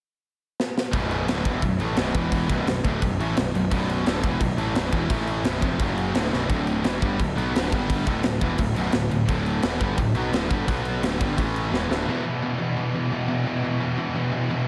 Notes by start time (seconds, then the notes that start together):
0.60 snare
0.78 snare
0.91 B0 B1 F#2 B2, kick, crash
1.11 crash
1.27 D1 D2 A2 D3, snare, crash
1.44 E1 E2 B2 E3, kick, crash
1.61 B0 B1 F#2, kick, crash
1.79 A1 A2 E3 A3, crash
1.95 B0 B1 F#2 B2, snare, crash
2.14 E1 E2 B2 E3, kick, crash
2.32 kick, crash
2.49 B0 B1 F#2 B2, kick, crash
2.67 B0 B1 F#2, snare, crash
2.84 D1 D2 A2 D3, kick, crash
3.02 B0 B1 F#2, kick, crash
3.18 A1 A2 E3 A3, crash
3.36 B0 B1 F#2, snare, crash
3.53 B0 B1 F#2, crash
3.71 B0 B1 F#2 B2, kick, crash
3.90 crash
4.06 D1 D2 A2 D3, snare, crash
4.23 E1 E2 B2 E3, kick, crash
4.41 B0 B1 F#2, kick, crash
4.56 A1 A2 E3 A3, crash
4.74 B0 B1 F#2 B2, snare, crash
4.92 E1 E2 B2 E3, kick, crash
5.10 A1 A2 E3 A3, kick, crash
5.27 crash
5.43 B0 B1 F#2 B2, snare, crash
5.61 F1 F2 C3 F3, kick, crash
5.80 F#1 F#2 C#3 F#3, kick, crash
5.97 crash
6.14 D1 D2 A2 D3, snare, crash
6.30 B0 B1 F#2 B2, snare
6.48 D1 D2 A2 D3, kick, crash
6.67 crash
6.83 E1 E2 B2 E3, snare, crash
7.01 G1 G2 D3 G3, kick, crash
7.19 D1 D2 A2, kick, crash
7.37 B1 B2 F#3 B3, crash
7.54 D1 D2 A2 D3, snare, crash
7.72 G1 G2 D3 G3, kick, crash
7.90 kick, crash
8.07 D1 D2 A2 D3, kick, crash
8.23 D1 D2 A2, snare, crash
8.40 E1 E2 B2 E3, kick, crash
8.58 D1 D2 A2, kick, crash
8.75 B0 B1 F#2 B2, crash
8.92 D1 D2 A2, snare, crash
9.09 D1 D2 A2, crash
9.26 D1 D2 A2 D3, kick, crash
9.46 crash
9.62 E1 E2 B2 E3, snare, crash
9.79 G1 G2 D3 G3, kick, crash
9.97 D1 D2 A2, kick, crash
10.15 B1 B2 F#3 B3, crash
10.32 D1 D2 A2 D3, snare, crash
10.48 G1 G2 D3 G3, kick, crash
10.67 B1 B2 F#3 B3, kick, crash
10.85 crash
11.02 D1 D2 A2 D3, snare, crash
11.21 G1 G2 D3 G3, kick, crash
11.38 A1 A2 E3 A3, kick, crash
11.56 crash
11.71 E1 E2 B2 E3, snare
11.89 D1 D2 A2 D3, snare
12.06 E2 B2 E3
12.14 E2 B2
12.22 E2 B2
12.30 E2 B2
12.36 E2 B2
12.44 E2 B2 E3
12.53 E2 B2
12.60 E2 B2 E3
12.68 E2 B2
12.76 E2 B2
12.80 E2 E3
12.84 B2
12.91 E2 B2
12.98 E2 B2
13.07 E2 B2
13.13 E2 B2 E3
13.22 E2 B2
13.30 E2 B2 E3
13.37 E2 B2
13.46 E2 B2 E3
13.54 E2 B2
13.61 E2 B2
13.69 E2 B2
13.76 E2 B2
13.81 E2 E3
13.85 E2 B2
13.91 E2 B2
13.98 E2 B2 E3
14.08 E2 B2
14.16 E2 B2 E3
14.23 E2 B2
14.31 E2 B2
14.39 E2 B2
14.46 E2 B2
14.50 E2 B2 E3
14.62 E2 B2